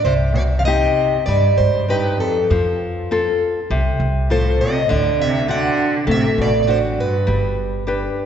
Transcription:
0.03 C2 G2 C3 C5
0.33 B2 D5
0.58 D3 F5
0.64 C3 C4 D#4 G4 D#5
1.26 G2 G3 D5
1.57 G2 G#2 C5
1.88 G2 C4 D#4 G4 B4
2.16 F2 A4
2.50 F2 F3
3.11 C4 F4 A4
3.70 C2 C3
4.00 C2
4.29 A2 C4 F4 A4 C5
4.59 C3 D#5
4.89 D2 A2 D3 D5
5.20 C3 E5
5.48 D3 C4 D4 F#4 F#5
6.07 A1 C3 A3
6.11 E5
6.37 A1 B2
6.42 D5
6.58 B2
6.63 A2 D5
6.67 C4 D4 F#4 C5
6.94 G2
7.00 B4
7.27 G1 G3
7.87 D4 G4 B4

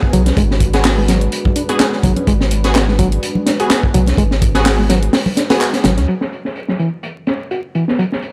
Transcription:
Already playing: G#3 D4 F#4 B4
0.03 kick
0.13 B1 F#3, closed hi-hat, low conga
0.26 C#4, snare, closed hi-hat, high conga
0.37 G#1 G#3, kick, closed hi-hat
0.51 snare
0.60 kick, closed hi-hat
0.73 B3 F#4 G#4, snare, closed hi-hat
0.85 snare, clap, closed hi-hat, open hi-hat
0.98 G#3
1.08 F#3, snare, closed hi-hat
1.21 closed hi-hat
1.32 closed hi-hat
1.45 kick, high conga
1.56 D4, closed hi-hat
1.69 B3 F#4 G#4, closed hi-hat
1.80 G#4, snare, clap, closed hi-hat
1.92 snare
2.03 G#1 F#3, kick, closed hi-hat, low conga
2.16 C#4, closed hi-hat, high conga
2.27 G#1 G#3, kick, closed hi-hat
2.41 snare
2.51 closed hi-hat
2.64 B3 F#4 G#4, snare, closed hi-hat
2.75 snare, clap, closed hi-hat
2.88 G#3, snare
2.99 F#3, kick, closed hi-hat
3.12 closed hi-hat
3.23 closed hi-hat
3.35 high conga
3.46 D4, snare, closed hi-hat
3.60 B3 F#4 G#4, closed hi-hat
3.70 G#4, snare, clap, closed hi-hat
3.83 kick
3.94 B1 F#3, closed hi-hat, low conga
4.06 C#4, snare, closed hi-hat, high conga
4.17 G#1 G#3, kick, closed hi-hat
4.31 snare
4.42 kick, closed hi-hat
4.55 B3 F#4 G#4, snare, closed hi-hat
4.66 snare, clap, closed hi-hat, open hi-hat
4.79 G#3
4.89 F#3, snare, closed hi-hat
5.03 closed hi-hat
5.13 snare, closed hi-hat, open hi-hat
5.26 high conga
5.37 D4, snare, closed hi-hat
5.50 B3 F#4 G#4, snare, closed hi-hat, open hi-hat
5.61 G#4, clap, closed hi-hat
5.73 snare, closed hi-hat
5.84 G#1 F#3, snare, closed hi-hat, low conga
5.97 D2 C#4, snare, closed hi-hat, high conga
6.08 F#3 C#4 E4 A4, closed hi-hat
6.21 snare
6.33 closed hi-hat
6.45 snare
6.56 closed hi-hat
6.68 F#3, snare
6.79 E3, closed hi-hat
7.03 closed hi-hat
7.27 C#4, snare, closed hi-hat
7.40 closed hi-hat
7.51 F#4, closed hi-hat
7.75 E3, closed hi-hat
7.88 B3, snare
7.99 F#3, closed hi-hat
8.12 snare
8.22 closed hi-hat

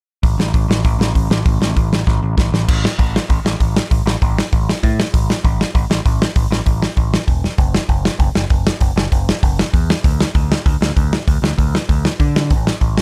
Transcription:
0.23 A1, kick, open hi-hat
0.38 A1, snare
0.54 A1, kick, open hi-hat
0.68 A1, snare
0.85 A1, kick, open hi-hat
0.99 A1, snare
1.15 A1, kick, open hi-hat
1.30 A1, snare
1.46 A1, kick, open hi-hat
1.61 A1, snare
1.76 A1, kick, open hi-hat
1.93 snare
2.07 A1, kick, snare
2.23 A1
2.37 A1, kick, snare
2.52 A1, snare
2.68 A1, kick, crash
2.85 snare
2.99 A1, kick, open hi-hat
3.16 snare
3.29 A1, kick, open hi-hat
3.45 A1, snare
3.60 A1, kick, open hi-hat
3.77 snare
3.91 A1, kick, open hi-hat
4.06 A1, snare
4.22 A1, kick, open hi-hat
4.38 snare
4.52 A1, kick, open hi-hat
4.69 snare
4.83 A2, kick, open hi-hat
5.00 snare
5.14 A1, kick, open hi-hat
5.30 snare
5.44 A1, kick, open hi-hat
5.61 snare
5.75 A1, kick, open hi-hat
5.90 A1, snare
6.06 A1, kick, open hi-hat
6.22 snare
6.36 A1, kick, open hi-hat
6.51 A1, snare
6.66 A1, kick, open hi-hat
6.82 snare
6.97 A1, kick, open hi-hat
7.14 snare
7.27 E1, kick, open hi-hat
7.44 snare
7.58 F#1, kick, open hi-hat
7.74 snare
7.89 F#1, kick, open hi-hat
8.05 snare
8.19 F#1, kick, open hi-hat
8.35 F#1, snare
8.50 F#1, kick, open hi-hat
8.67 snare
8.81 F#1, kick, open hi-hat
8.96 F#1, snare
9.12 F#1, kick, open hi-hat
9.29 snare
9.43 F#1, kick, open hi-hat
9.59 snare
9.73 E2, kick, open hi-hat
9.90 snare
10.04 D2, kick, open hi-hat
10.20 snare
10.35 D2, kick, open hi-hat
10.52 snare
10.66 D2, kick, open hi-hat
10.81 D2, snare
10.96 D2, kick, open hi-hat
11.13 snare
11.28 D2, kick, open hi-hat
11.42 D2, snare
11.58 D2, kick, open hi-hat
11.75 snare
11.89 D2, kick, open hi-hat
12.05 snare
12.20 D3, kick, open hi-hat
12.36 snare
12.50 A1, kick, open hi-hat
12.67 snare
12.81 A1, kick, open hi-hat
12.98 snare

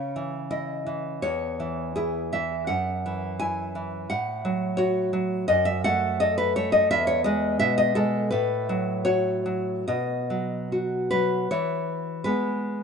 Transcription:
Already playing: C#3 C#5
0.16 E3
0.51 E4 D#5
0.87 E3
1.22 E2 C#5
1.60 E3
1.96 E4 G#4
2.33 E3 E5
2.67 F#2 F#5
3.06 E3
3.39 E4 G#5
3.75 E3
4.10 A2 F#5
4.45 F#3
4.77 F#4 C#5
5.13 F#3
5.48 F#2 D#5
5.65 E5
5.84 A3 F#5
6.20 A4 D#5
6.38 B4
6.56 A3 C#5
6.72 D#5
6.91 E2 E5
7.07 C#5
7.24 G#3 D#5
7.59 B2 E5
7.78 D#5
7.95 G#3 A4
8.31 A2 B4
8.69 F#3
9.05 F#4 C#5
9.46 F#3
9.88 B2 D#5
10.30 F#3
10.72 F#4
11.11 F#3 B4
11.51 E3 C#5
12.24 G#3 B3 B4

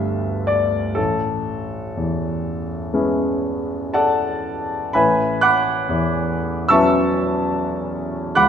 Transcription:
Already playing: G1 D2 G3 B3 D4 A4 E5
0.47 D5
0.95 A1 A4
1.97 E2
2.94 G#3 B3 C#4 E4
3.94 A4 D5 F#5 A5
4.93 A1 B4 E5 G#5 B5
5.41 F#5 B5 D6 F#6
5.89 E2
6.68 F#3 B3 C#4 E4 E5 A5 C#6 E6
8.35 C#2 F#5 B5 D6 F#6

